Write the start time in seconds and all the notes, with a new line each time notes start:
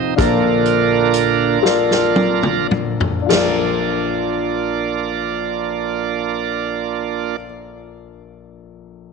Already playing: F1 F2 C4 D#4 F4 A4 C5 F5
0.16 A#1 A#2 D3 A#3 D4 F4 A4 A#4, kick, closed hi-hat
0.20 D5
0.65 closed hi-hat
1.14 closed hi-hat
1.61 D4 F4 A4 A#4 D5
1.65 snare
1.91 snare
2.16 high tom
2.43 mid tom
2.71 mid tom
3.00 floor tom
3.22 D4
3.26 A#1 A#3 D4 F4 A4 D5
3.30 A#4, snare, crash
3.37 D5